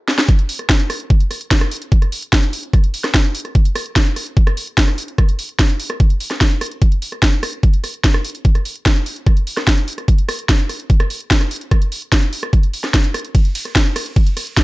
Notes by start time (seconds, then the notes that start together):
0.08 snare
0.18 snare
0.29 kick, closed hi-hat
0.39 closed hi-hat
0.49 open hi-hat
0.59 cross-stick, closed hi-hat
0.69 kick, snare, closed hi-hat
0.80 closed hi-hat
0.90 cross-stick, open hi-hat
1.00 closed hi-hat
1.10 kick, closed hi-hat
1.20 closed hi-hat
1.31 cross-stick, open hi-hat
1.41 closed hi-hat
1.51 kick, snare, closed hi-hat
1.61 cross-stick, closed hi-hat
1.71 open hi-hat
1.77 closed hi-hat
1.82 closed hi-hat
1.92 kick, closed hi-hat
2.02 cross-stick, closed hi-hat
2.12 open hi-hat
2.22 closed hi-hat
2.33 kick, cross-stick, snare, closed hi-hat
2.43 closed hi-hat
2.53 open hi-hat
2.63 closed hi-hat
2.73 kick, cross-stick, closed hi-hat
2.84 closed hi-hat
2.94 open hi-hat
3.04 cross-stick, snare, closed hi-hat
3.14 kick, snare, closed hi-hat
3.24 closed hi-hat
3.35 open hi-hat
3.40 closed hi-hat
3.45 cross-stick, closed hi-hat
3.55 kick, closed hi-hat
3.65 closed hi-hat
3.75 cross-stick, open hi-hat
3.86 closed hi-hat
3.96 kick, snare, closed hi-hat
4.06 closed hi-hat
4.16 cross-stick, open hi-hat
4.27 closed hi-hat
4.37 kick, closed hi-hat
4.47 cross-stick, closed hi-hat
4.57 open hi-hat
4.67 closed hi-hat
4.78 kick, snare, closed hi-hat
4.88 cross-stick, closed hi-hat
4.98 open hi-hat
5.03 closed hi-hat
5.08 closed hi-hat
5.18 kick, cross-stick, closed hi-hat
5.29 closed hi-hat
5.39 open hi-hat
5.49 closed hi-hat
5.59 kick, cross-stick, snare, closed hi-hat
5.69 closed hi-hat
5.80 open hi-hat
5.90 cross-stick, closed hi-hat
6.00 kick, closed hi-hat
6.10 closed hi-hat
6.20 open hi-hat
6.31 cross-stick, snare, closed hi-hat
6.41 kick, snare, closed hi-hat
6.51 closed hi-hat
6.61 cross-stick, open hi-hat
6.66 closed hi-hat
6.71 closed hi-hat
6.82 kick, closed hi-hat
6.92 closed hi-hat
7.02 open hi-hat
7.12 cross-stick, closed hi-hat
7.22 kick, snare, closed hi-hat
7.33 closed hi-hat
7.43 cross-stick, open hi-hat
7.53 closed hi-hat
7.63 kick, closed hi-hat
7.74 closed hi-hat
7.84 cross-stick, open hi-hat
7.94 closed hi-hat
8.04 kick, snare, closed hi-hat
8.14 cross-stick, closed hi-hat
8.25 open hi-hat
8.30 closed hi-hat
8.35 closed hi-hat
8.45 kick, closed hi-hat
8.55 cross-stick, closed hi-hat
8.65 open hi-hat
8.76 closed hi-hat
8.86 kick, cross-stick, snare, closed hi-hat
8.96 closed hi-hat
9.06 open hi-hat
9.16 closed hi-hat
9.27 kick, cross-stick, closed hi-hat
9.37 closed hi-hat
9.47 open hi-hat
9.57 cross-stick, snare, closed hi-hat
9.67 kick, snare, closed hi-hat
9.78 closed hi-hat
9.88 open hi-hat
9.93 closed hi-hat
9.98 cross-stick, closed hi-hat
10.08 kick, closed hi-hat
10.18 closed hi-hat
10.29 cross-stick, open hi-hat
10.39 closed hi-hat
10.49 kick, snare, closed hi-hat
10.59 closed hi-hat
10.69 cross-stick, open hi-hat
10.80 closed hi-hat
10.90 kick, closed hi-hat
11.00 cross-stick, closed hi-hat
11.10 open hi-hat
11.20 closed hi-hat
11.31 kick, snare, closed hi-hat
11.41 cross-stick, closed hi-hat
11.51 open hi-hat
11.56 closed hi-hat
11.61 closed hi-hat
11.71 kick, cross-stick, closed hi-hat
11.82 closed hi-hat
11.92 open hi-hat
12.02 closed hi-hat
12.12 kick, cross-stick, snare, closed hi-hat
12.22 closed hi-hat
12.33 open hi-hat
12.43 cross-stick, closed hi-hat
12.53 kick, closed hi-hat
12.63 closed hi-hat
12.74 open hi-hat
12.84 cross-stick, snare, closed hi-hat
12.94 kick, snare, closed hi-hat
13.04 closed hi-hat
13.14 cross-stick, open hi-hat
13.19 closed hi-hat
13.25 closed hi-hat
13.35 kick, closed hi-hat, ride
13.45 closed hi-hat
13.55 open hi-hat, ride
13.65 cross-stick, closed hi-hat
13.75 kick, snare, closed hi-hat, ride
13.86 closed hi-hat
13.96 cross-stick, open hi-hat, ride
14.06 closed hi-hat
14.16 kick, closed hi-hat, ride
14.27 closed hi-hat
14.37 cross-stick, open hi-hat, ride
14.47 closed hi-hat
14.57 kick, snare, closed hi-hat, ride